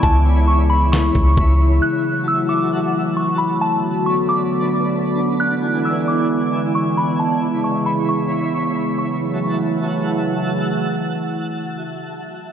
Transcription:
Already playing: E3 B3 E4
0.03 C#2 C#3 G#3 C#5 A5 B5, kick
0.48 C#6
0.70 B5
0.92 C#6, snare
1.15 C#2, kick
1.37 C#2, kick
1.82 E3 F#3 A3 F#4 E5 A5 F#6
2.28 E6
2.49 D6
3.17 C#6
3.38 B5
3.61 D3 B3 D4 F#4 B4 A5
4.06 C#6
4.29 D6
5.40 D3 E3 G#3 E4 D5 G#5 F#6
5.85 E6
6.08 D6
6.75 C#6
6.97 B5
7.19 C#3 E4 C#5 A5 B5
7.64 C#6
7.86 B5
8.09 C#6
8.98 C#3 E3 F#3 A3 E4 F#4 E5 A5 C#6

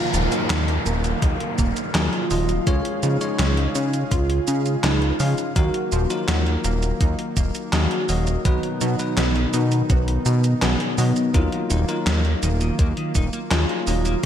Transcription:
Already playing: D#3 F#3 A#3 D#4 F4 A#4 F5, downlifter
0.14 D#1 F3, closed hi-hat, shaker
0.32 F#3 D#4 F4 A#4, closed hi-hat, shaker
0.50 D#2 F#3, snare, clap, closed hi-hat, shaker
0.68 closed hi-hat
0.86 D#1 A#3, closed hi-hat, shaker
1.04 closed hi-hat, shaker
1.22 D#2 D#4, kick, closed hi-hat, shaker
1.40 closed hi-hat
1.58 D#1 A#3, kick, closed hi-hat, shaker
1.77 closed hi-hat, shaker
1.95 D#2 F#3 D#4 F4 G#4, snare, clap, closed hi-hat, shaker
2.13 closed hi-hat
2.31 D#1 F3 F#3 D#4 F4 D#5, open hi-hat, shaker
2.49 closed hi-hat, shaker
2.67 C#2 C#3 G#3 C#4 F4 G#4 C#5, kick, closed hi-hat, shaker
2.85 closed hi-hat
3.03 C#3 F3 D#4, closed hi-hat, shaker
3.21 G#3 C#4 F4 C#5, closed hi-hat, shaker
3.39 C#2 G#3, snare, clap, closed hi-hat, shaker
3.57 closed hi-hat
3.75 C#3 C#4, closed hi-hat, shaker
3.93 closed hi-hat, shaker
4.11 C#2 F4, kick, closed hi-hat, shaker
4.30 closed hi-hat
4.48 C#3 C#4, closed hi-hat, shaker
4.66 closed hi-hat, shaker
4.84 C#2 G#3 C#4 D#4 F4 B4, snare, clap, closed hi-hat, shaker
5.02 closed hi-hat
5.20 C#3 F3 G#3 C#4 F4 F5, open hi-hat, shaker
5.38 closed hi-hat, shaker
5.56 D#2 D#3 F#3 A#3 D#4 F#4 A#4 F5, kick, closed hi-hat, shaker
5.74 closed hi-hat
5.92 D#1 F3, closed hi-hat, shaker
6.10 F#3 D#4 F4 A#4, closed hi-hat, shaker
6.28 D#2 F#3, snare, clap, closed hi-hat, shaker
6.46 closed hi-hat
6.64 D#1 A#3, closed hi-hat, shaker
6.83 closed hi-hat, shaker
7.01 D#2 D#4, kick, closed hi-hat, shaker
7.19 closed hi-hat
7.37 D#1 A#3, kick, closed hi-hat, shaker
7.55 closed hi-hat, shaker
7.73 D#2 F#3 D#4 F#4 G#4 F5, snare, clap, closed hi-hat, shaker
7.91 closed hi-hat
8.09 D#1 F#3 D#4 D#5 F5, open hi-hat, shaker
8.27 closed hi-hat, shaker
8.45 B1 B2 D#3 F#3 B3 D#4 B4, kick, closed hi-hat, shaker
8.63 closed hi-hat
8.81 B2 F#3 D#4, closed hi-hat, shaker
8.99 F#3 B3 D#4 B4, closed hi-hat, shaker
9.17 B1 B3, snare, clap, closed hi-hat, shaker
9.36 closed hi-hat
9.54 B2 D#4, closed hi-hat, shaker
9.72 closed hi-hat, shaker
9.90 B1 B3 F#4, kick, closed hi-hat, shaker
10.08 closed hi-hat
10.26 B2 D#4, closed hi-hat, shaker
10.44 closed hi-hat, shaker
10.62 B1 F#3 B3 D#4 G#4, snare, clap, closed hi-hat, shaker
10.80 closed hi-hat
10.98 B2 F#3 B3 D#4 D#5, open hi-hat, shaker
11.16 closed hi-hat, shaker
11.34 D#2 D#3 F#3 A#3 D#4 F4 A#4, kick, closed hi-hat, shaker
11.52 D#3, closed hi-hat
11.70 D#1 D#4, closed hi-hat, shaker
11.89 F#3 A#3 D#4 F4 A#4, closed hi-hat, shaker
12.07 D#2 D#3, snare, clap, closed hi-hat, shaker
12.25 A#3, closed hi-hat
12.43 D#1 D#3, closed hi-hat, shaker
12.61 D#3, closed hi-hat, shaker
12.79 D#2 A#3, kick, closed hi-hat, shaker
12.97 D#3, closed hi-hat
13.15 D#1 D#4, kick, closed hi-hat, shaker
13.33 A#3, closed hi-hat, shaker
13.51 D#2 D#3 F#3 D#4 F4 G#4, snare, clap, closed hi-hat, shaker
13.69 A#3, closed hi-hat
13.87 D#1 D#3 F#3 D#4 F4 D#5, open hi-hat, shaker
14.05 A#3, closed hi-hat, shaker

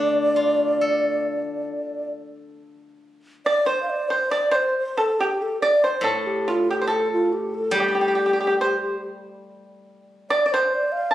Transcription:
Already playing: D3 A3 D4 D5
0.36 F4
0.81 A4
3.46 D5
3.66 C5
3.82 F5
3.90 D5
4.09 C5
4.31 D5
4.51 C5
4.56 C5
4.78 C5
4.97 A4
5.20 G4
5.42 A4
5.62 D5
5.84 C5
6.01 A2 A4
6.26 G4
6.48 F4
6.69 G4
6.82 C5
6.87 A4
6.92 A4
7.12 F4
7.33 G4
7.54 A4
7.71 G3 G4
7.76 G4
7.80 G4
7.88 G4
7.95 G4
8.01 G4
8.08 G4
8.15 G4
8.26 G4
8.33 G4
8.40 G4
8.47 G4
8.61 C5
10.30 D5
10.46 D5
10.52 C5
10.74 D5
10.92 F5
11.11 A5

